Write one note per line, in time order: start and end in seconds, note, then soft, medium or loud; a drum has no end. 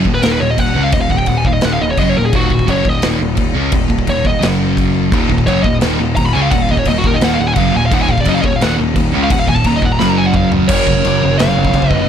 0.05 0.22 D#1 medium
0.05 0.21 D#2 medium
0.05 0.21 A#2 medium
0.05 kick medium
0.15 0.23 B4 medium
0.23 0.40 D#1 medium
0.23 0.41 D#2 medium
0.23 0.41 A#2 loud
0.23 0.42 D#3 loud
0.23 0.31 A#4 medium
0.23 snare loud
0.23 crash medium
0.31 0.40 B4 medium
0.40 0.57 D#1 medium
0.40 0.56 D#2 medium
0.40 0.56 A#2 medium
0.40 0.49 C#5 medium
0.51 0.59 D#5 medium
0.58 0.75 D#1 medium
0.58 0.73 D#2 medium
0.58 0.73 A#2 medium
0.58 0.84 F#5 loud
0.58 kick medium
0.58 crash medium
0.74 0.92 C#2 medium
0.74 0.94 C#3 medium
0.74 0.92 G#3 loud
0.78 0.94 G#3 loud
0.78 0.94 C#4 loud
0.84 0.93 F5 medium
0.91 1.10 D#1 medium
0.91 1.06 D#2 medium
0.91 1.07 A#2 medium
0.91 1.01 D#5 medium
0.91 kick loud
0.91 crash medium
0.95 1.09 D#2 medium
0.95 1.09 A#2 medium
1.01 1.10 F5 medium
1.10 1.27 D#1 medium
1.10 1.26 D#2 medium
1.10 1.26 A#2 medium
1.10 1.18 F#5 medium
1.10 kick medium
1.18 1.27 G5 loud
1.18 kick medium
1.26 1.44 D#1 medium
1.26 1.36 F#5 medium
1.26 kick medium
1.26 crash medium
1.31 1.44 D#2 medium
1.31 1.44 A#2 medium
1.38 1.46 G#5 loud
1.45 1.62 D#1 medium
1.45 1.61 D#2 medium
1.45 1.61 A#2 medium
1.45 1.53 F5 medium
1.45 kick medium
1.53 1.64 D#5 medium
1.61 1.80 D#1 medium
1.61 1.80 D#2 loud
1.61 1.73 F#5 loud
1.61 snare loud
1.61 crash medium
1.65 1.81 A#2 loud
1.65 1.82 D#3 loud
1.73 1.81 F5 medium
1.81 1.97 D#1 medium
1.81 1.95 D#2 medium
1.81 1.96 A#2 medium
1.81 1.90 D#5 loud
1.91 1.99 C#5 medium
1.97 2.14 F#1 medium
1.97 2.16 F#2 medium
1.97 2.16 C#3 loud
1.97 2.16 F#3 loud
1.97 2.09 D#5 loud
1.97 kick medium
1.97 crash medium
2.09 2.17 C#5 medium
2.17 2.33 D#1 medium
2.17 2.31 D#2 medium
2.17 2.31 A#2 medium
2.17 2.25 A#4 loud
2.26 2.34 G#4 medium
2.33 2.50 D#1 loud
2.33 2.51 D#2 loud
2.33 2.51 A#2 loud
2.33 2.52 D#3 loud
2.33 2.67 F#4 medium
2.33 kick loud
2.33 crash medium
2.50 2.67 D#1 medium
2.50 2.65 D#2 medium
2.50 2.66 A#2 medium
2.50 kick medium
2.59 kick medium
2.68 2.84 F#1 loud
2.68 2.85 F#2 medium
2.68 2.86 C#3 loud
2.68 2.86 F#3 medium
2.68 2.89 C#5 medium
2.68 kick medium
2.68 crash medium
2.85 3.02 D#1 medium
2.85 3.00 D#2 medium
2.85 3.01 A#2 medium
2.85 3.05 D#5 loud
2.85 kick medium
3.02 3.20 D#1 loud
3.02 3.18 D#2 medium
3.02 3.19 A#2 loud
3.02 3.21 D#3 loud
3.02 snare loud
3.02 crash medium
3.20 3.37 D#1 medium
3.20 3.34 D#2 medium
3.20 3.35 A#2 medium
3.35 3.54 D#1 medium
3.35 3.51 D#2 medium
3.35 3.53 A#2 medium
3.35 kick medium
3.35 crash medium
3.39 3.53 D#2 medium
3.56 3.72 C#2 loud
3.56 3.73 C#3 medium
3.56 3.73 G#3 loud
3.56 3.74 C#4 loud
3.72 3.89 D#1 medium
3.72 3.87 D#2 medium
3.72 3.87 A#2 medium
3.72 kick loud
3.72 crash medium
3.90 4.07 D#1 medium
3.90 4.05 D#2 medium
3.90 4.05 A#2 medium
3.90 kick medium
3.99 kick medium
4.07 4.24 D#1 medium
4.07 4.22 D#2 medium
4.07 4.22 A#2 medium
4.07 4.26 C#5 medium
4.07 kick medium
4.07 crash medium
4.24 4.42 D#1 medium
4.24 4.39 D#2 medium
4.24 4.39 A#2 medium
4.24 4.44 D#5 loud
4.24 kick medium
4.41 5.09 F#1 loud
4.41 5.11 F#2 loud
4.41 5.12 C#3 loud
4.41 5.12 F#3 loud
4.41 snare loud
4.41 crash medium
4.77 kick medium
4.77 crash medium
5.12 5.29 D#1 loud
5.12 5.28 D#2 loud
5.12 5.28 A#2 loud
5.12 5.30 D#3 loud
5.12 kick loud
5.12 crash medium
5.29 5.47 D#1 medium
5.29 5.44 D#2 medium
5.29 5.44 A#2 medium
5.29 kick loud
5.38 kick medium
5.47 5.64 F#1 loud
5.47 5.65 F#2 medium
5.47 5.65 C#3 medium
5.47 5.66 F#3 loud
5.47 5.63 C#5 medium
5.47 kick medium
5.47 crash medium
5.63 5.81 D#1 medium
5.63 5.79 D#2 medium
5.63 5.79 A#2 medium
5.63 5.74 D#5 loud
5.63 kick medium
5.81 5.99 D#1 loud
5.81 5.99 D#2 loud
5.81 5.99 A#2 loud
5.81 6.00 D#3 loud
5.81 snare loud
5.81 crash medium
6.00 6.16 D#1 medium
6.00 6.14 D#2 medium
6.00 6.14 A#2 medium
6.16 6.34 D#1 medium
6.16 6.32 D#2 medium
6.16 6.32 A#2 medium
6.16 6.25 A#5 loud
6.16 kick medium
6.16 crash medium
6.25 6.34 B5 loud
6.33 6.51 C#2 medium
6.33 6.52 C#3 medium
6.33 6.53 G#3 loud
6.33 6.53 C#4 loud
6.33 6.42 G#5 loud
6.42 6.51 F5 medium
6.51 6.68 D#1 medium
6.51 6.66 D#2 medium
6.51 6.67 A#2 medium
6.51 6.62 F#5 loud
6.51 kick loud
6.51 crash medium
6.62 6.70 F5 loud
6.69 6.86 D#1 medium
6.69 6.84 D#2 medium
6.69 6.84 A#2 medium
6.69 6.79 D#5 medium
6.69 kick medium
6.77 6.87 C#5 medium
6.77 kick medium
6.85 7.03 D#1 medium
6.85 7.02 D#2 medium
6.85 7.02 A#2 medium
6.85 6.97 D#5 loud
6.85 kick medium
6.85 crash medium
6.98 7.06 F#4 medium
7.04 7.21 D#1 medium
7.04 7.19 D#2 medium
7.04 7.20 A#2 medium
7.04 7.14 A#4 medium
7.04 kick loud
7.14 7.23 D#5 medium
7.21 7.39 D#1 medium
7.21 7.39 D#2 loud
7.21 7.39 A#2 medium
7.21 7.40 D#3 loud
7.21 7.32 F#5 loud
7.21 snare loud
7.21 crash medium
7.34 7.41 F5 loud
7.40 7.56 D#1 medium
7.40 7.54 D#2 medium
7.40 7.54 A#2 medium
7.40 7.46 F#5 loud
7.48 7.53 G#5 loud
7.54 7.73 F#1 loud
7.54 7.74 F#2 medium
7.54 7.74 C#3 loud
7.54 7.58 F#5 medium
7.54 kick medium
7.54 crash medium
7.58 7.75 F#3 loud
7.58 7.75 F5 loud
7.74 7.91 D#1 medium
7.74 7.88 D#2 medium
7.74 7.89 A#2 medium
7.74 7.84 G#5 loud
7.86 7.93 F5 medium
7.92 8.08 D#1 loud
7.92 8.09 D#2 loud
7.92 8.09 A#2 medium
7.92 8.10 D#3 loud
7.92 8.02 F#5 loud
7.92 kick loud
7.92 crash medium
8.02 8.12 G#5 loud
8.09 8.25 D#1 medium
8.09 8.24 D#2 medium
8.09 8.24 A#2 medium
8.09 8.19 F5 medium
8.09 kick medium
8.18 8.28 D5 medium
8.18 kick medium
8.25 8.43 F#1 loud
8.25 8.44 F#2 medium
8.25 8.45 C#3 medium
8.25 8.45 F#3 loud
8.25 8.34 D#5 loud
8.25 kick medium
8.25 crash medium
8.35 8.39 F5 loud
8.41 8.60 D#1 medium
8.41 8.58 A#2 medium
8.41 8.45 D#5 medium
8.41 kick medium
8.46 8.60 D#2 medium
8.46 8.60 A#2 medium
8.46 8.54 C#5 medium
8.56 8.63 F5 medium
8.61 8.78 D#1 loud
8.61 8.79 D#2 loud
8.61 8.79 A#2 loud
8.61 8.80 D#3 loud
8.61 8.73 F#5 loud
8.61 snare loud
8.61 crash medium
8.76 8.95 D#1 medium
8.76 8.92 D#2 medium
8.76 8.92 A#2 medium
8.82 8.94 D#2 medium
8.82 8.94 A#2 medium
8.96 9.12 D#1 medium
8.96 9.11 D#2 medium
8.96 9.11 A#2 medium
8.96 kick medium
8.96 crash medium
9.14 9.30 C#2 medium
9.14 9.31 C#3 medium
9.14 9.32 G#3 loud
9.14 9.32 C#4 loud
9.24 9.31 F5 medium
9.30 9.47 D#1 loud
9.30 9.46 D#2 medium
9.30 9.46 A#2 medium
9.30 9.39 F#5 loud
9.30 kick loud
9.30 crash medium
9.40 9.48 F5 medium
9.48 9.64 D#1 medium
9.48 9.63 D#2 medium
9.48 9.63 A#2 medium
9.48 9.56 G#5 loud
9.48 kick medium
9.56 9.65 A5 medium
9.56 kick medium
9.64 9.81 D#1 medium
9.64 9.80 D#2 medium
9.64 9.80 A#2 medium
9.64 9.75 A#5 loud
9.64 kick medium
9.64 crash medium
9.76 9.84 D#5 medium
9.82 9.99 D#1 medium
9.82 9.98 D#2 medium
9.82 9.98 A#2 medium
9.82 9.91 F#5 loud
9.82 kick medium
9.92 9.99 A#5 medium
9.99 10.66 F#1 loud
9.99 10.69 F#2 loud
9.99 10.69 C#3 medium
9.99 10.70 F#3 loud
9.99 10.09 B5 loud
9.99 snare medium
10.09 10.18 A#5 loud
10.18 10.26 G#5 loud
10.26 10.35 F#5 medium
10.34 10.47 F5 loud
10.34 kick medium
10.34 mid tom medium
10.52 floor tom loud
10.68 10.83 F#1 loud
10.68 10.87 F#2 loud
10.68 10.86 C#3 loud
10.68 10.87 F#3 loud
10.68 11.36 A#4 medium
10.68 11.41 C#5 loud
10.68 kick loud
10.68 crash loud
10.68 china medium
10.87 11.00 F#1 medium
10.87 10.95 F#2 medium
10.87 10.95 C#3 medium
10.87 kick medium
10.96 11.03 F#2 medium
10.96 11.04 C#3 medium
11.04 11.19 F#1 medium
11.04 11.20 F#2 medium
11.04 11.21 C#3 medium
11.04 china medium
11.23 11.36 F#1 medium
11.23 11.30 F#2 medium
11.23 11.30 C#3 loud
11.31 11.38 F#2 medium
11.31 11.39 C#3 medium
11.38 11.53 F#1 loud
11.38 11.47 F#2 medium
11.38 11.46 C#3 medium
11.38 11.88 C#5 loud
11.38 11.92 F5 loud
11.38 snare loud
11.38 china medium
11.42 12.09 F#3 medium
11.47 11.57 F#2 medium
11.47 11.57 C#3 medium
11.57 11.70 F#1 medium
11.57 11.66 F#2 medium
11.57 11.66 C#3 medium
11.65 11.75 F#2 medium
11.65 11.75 C#3 medium
11.65 kick medium
11.73 11.87 F#1 medium
11.73 11.91 F#2 medium
11.73 11.91 C#3 medium
11.73 kick medium
11.73 china medium
11.82 kick medium
11.88 12.04 F#1 medium
11.88 11.98 F#2 medium
11.88 11.98 C#3 loud
11.88 12.05 B4 loud
11.88 12.09 D#5 loud
11.88 kick loud
11.94 12.01 F#2 medium
11.94 12.01 C#3 medium
12.02 12.09 F#2 medium
12.02 12.09 C#3 medium